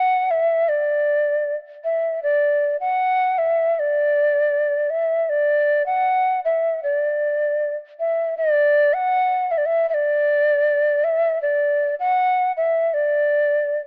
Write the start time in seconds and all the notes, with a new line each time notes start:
Already playing: F#5
0.31 E5
0.69 D5
1.84 E5
2.23 D5
2.80 F#5
3.38 E5
3.75 E5
3.79 D5
4.90 E5
5.29 D5
5.86 F#5
6.45 E5
6.83 D5
8.00 E5
8.37 D5
8.94 F#5
9.51 E5
9.58 D5
9.66 E5
9.89 E5
9.94 D5
11.04 E5
11.42 D5
12.00 F#5
12.57 E5
12.94 D5